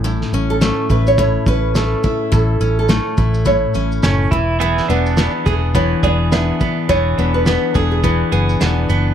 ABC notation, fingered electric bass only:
X:1
M:4/4
L:1/16
Q:"Swing 16ths" 1/4=105
K:A
V:1 name="Fingered electric bass" clef=bass
A,,,2 A,,,3 z A,,,4 A,,,4 z2 | A,,,2 A,,,3 z A,,,4 A,,,2 F,,,2 E,,,2- | E,,,2 E,,,3 z E,,,4 E,,,4 z2 | E,,,2 E,,,3 z E,,,4 F,,,2 E,,,2 F,,,2 |]